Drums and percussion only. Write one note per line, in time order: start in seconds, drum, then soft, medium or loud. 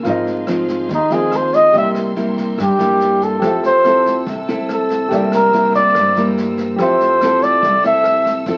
0.05 kick medium
0.05 cross-stick medium
0.05 snare soft
0.27 snare soft
0.47 cross-stick medium
0.47 snare soft
0.68 kick soft
0.68 snare soft
0.89 kick medium
0.89 snare soft
1.10 snare soft
1.31 cross-stick medium
1.31 snare soft
1.52 kick soft
1.52 snare soft
1.73 kick medium
1.73 snare soft
1.95 cross-stick medium
1.95 snare soft
2.16 snare soft
2.37 kick soft
2.37 snare soft
2.58 kick medium
2.58 cross-stick medium
2.58 snare soft
2.79 snare soft
3.00 snare soft
3.21 kick soft
3.21 snare soft
3.42 kick medium
3.42 cross-stick medium
3.42 snare soft
3.63 snare soft
3.84 cross-stick medium
3.84 snare soft
4.05 kick soft
4.05 snare soft
4.26 kick medium
4.26 snare soft
4.48 snare soft
4.69 cross-stick medium
4.69 snare soft
4.90 kick soft
4.90 snare soft
5.11 kick medium
5.11 snare soft
5.32 cross-stick medium
5.32 snare soft
5.53 snare soft
5.74 kick soft
5.74 snare soft
5.94 kick medium
5.94 cross-stick medium
5.94 snare soft
6.16 snare soft
6.37 snare soft
6.57 kick soft
6.57 snare soft
6.79 kick medium
6.79 cross-stick medium
6.79 snare soft
7.00 snare soft
7.21 cross-stick medium
7.21 snare soft
7.42 kick soft
7.42 snare soft
7.62 kick medium
7.62 snare soft
7.84 snare soft
8.04 cross-stick medium
8.04 snare soft
8.25 kick soft
8.25 snare soft
8.46 kick medium
8.46 snare soft